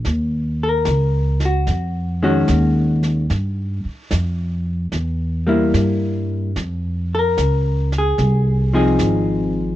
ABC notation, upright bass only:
X:1
M:4/4
L:1/8
Q:"Swing" 1/4=74
K:Fphr
V:1 name="Upright bass" clef=bass
E,,2 D,,2 F,,2 E,,2 | =G,, z F,,2 =E,,2 G,,2 | F,,2 D,,2 C,,2 A,,,2 |]